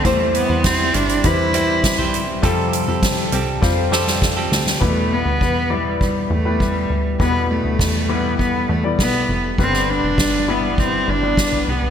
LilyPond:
<<
  \new Staff \with { instrumentName = "French horn section" } { \time 4/4 \key e \phrygian \tempo 4 = 101 << { e'1 | a'1 | b'1 | a'1 |
d''1 | } \\ { <g c'>1 | <f g'>1 | <e e' g'>1~ | <e e' g'>1 |
<g b'>1 | } >> }
  \new Staff \with { instrumentName = "Clean electric guitar" } { \time 4/4 \key e \phrygian <e g c' e' c''>8. <c' e' c''>8. <g c' e' c''>4 <e g c' e' c''>8. <e g c' e' c''>8. | <f g c' g' a'>8. <c' g' a'>8. <g c' g' a'>4 <f g c' g' a'>8. <f g c' g' a'>8. | r1 | r1 |
r1 | }
  \new Staff \with { instrumentName = "Grand piano" } { \time 4/4 \key e \phrygian <g c' e' c''>4.~ <g c' e' c''>16 r16 <g c' e' b'>8 <g c' e' c''>4~ <g c' e' c''>16 r16 | <g c' f' a'>4.~ <g c' f' a'>16 r16 <g c' f' c''>8 <g c' f' a'>4~ <g c' f' a'>16 r16 | <g b e' b'>4~ <g b e' b'>16 r16 <g b e' d''>4 r16 <g b e' b'>4 r16 | <g b e' b'>4~ <g b e' b'>16 r16 <g b e' b'>4 r16 <g b e' d''>4 r16 |
<g b d' b'>4~ <g b d' b'>16 r16 <g b d' e'>4 r16 <g b d' b'>4 r16 | }
  \new Staff \with { instrumentName = "Grand piano" } { \clef bass \time 4/4 \key e \phrygian e4. r2 r8 | c4. r2 r8 | b,4. r2 r8 | b,4. r2 r8 |
<g, d>4. r2 r8 | }
  \new Staff \with { instrumentName = "Cello" } { \time 4/4 \key e \phrygian a8 b8 c'8 d'8 e'4. r8 | r1 | a8 b4 g8 g8 a8 g8. r16 | b8 a4 b8 b8 a8 b8. r16 |
c'8 d'4 b8 c'8 d'4 b8 | }
  \new Staff \with { instrumentName = "Analog synth bass" } { \clef bass \time 4/4 \key e \phrygian e,8. e,8. g,,8 e,4. r8 | f,8. f,8. c,8 f,4. d,8 | e,8. d,16 e,4. e,4 d,8 | e,8. d,16 e,4. e,8 b,,8 f,,8 |
g,,8. f,,16 g,,4. g,,4 c,8 | }
  \new DrumStaff \with { instrumentName = "Drums" } \drummode { \time 4/4 <hh bd>8 hh8 <hh bd sn>8 hh16 hh16 <hh bd>8 hh8 <hh bd sn>16 tomfh16 hh8 | <hh bd>8 hh8 <hh bd sn>8 hh8 <bd sn>8 sn16 sn16 <bd sn>8 sn16 sn16 | bd4 bd4 bd4 bd4 | bd4 <bd sn>4 bd4 <bd sn>4 |
bd16 sn8. <bd sn>4 bd4 <bd sn>16 tomfh8 tomfh16 | }
>>